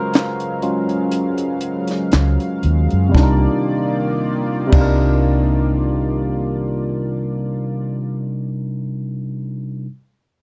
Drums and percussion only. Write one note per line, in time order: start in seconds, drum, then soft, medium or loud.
0.13 snare loud
0.13 clap medium
0.13 closed hi-hat medium
0.40 closed hi-hat medium
0.62 closed hi-hat medium
0.89 closed hi-hat soft
1.11 closed hi-hat medium
1.38 closed hi-hat medium
1.61 closed hi-hat medium
1.87 snare soft
1.87 closed hi-hat medium
2.11 snare medium
2.11 clap medium
2.11 closed hi-hat medium
2.40 closed hi-hat soft
2.63 closed hi-hat medium
2.90 closed hi-hat soft
3.15 kick medium
3.15 snare medium
4.72 kick loud
4.72 crash medium